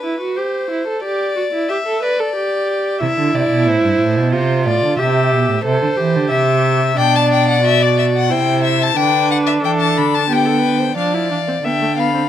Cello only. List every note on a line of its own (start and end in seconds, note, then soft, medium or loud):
3.02 3.08 C3 medium
3.18 3.34 D3 medium
3.34 3.41 C3 medium
3.49 3.68 B2 medium
3.67 3.82 A2 medium
3.83 3.99 G2 medium
3.99 4.18 A2 medium
4.16 4.34 B2 medium
4.33 4.68 C3 medium
4.66 4.85 A2 medium
4.83 4.99 D3 medium
5.00 5.34 C3 medium
5.32 5.48 B2 medium
5.49 5.56 A2 medium
5.65 5.82 C3 medium
5.82 5.89 D3 medium
5.99 6.17 E3 medium
6.16 6.33 D3 medium
6.31 6.99 C3 medium
6.98 8.32 B2 medium
8.31 8.96 C3 medium
8.97 9.63 D3 medium
9.64 9.99 E3 medium
9.97 10.96 D3 medium
10.97 11.32 F3 medium
11.30 11.63 E3 soft
11.63 12.29 D3 medium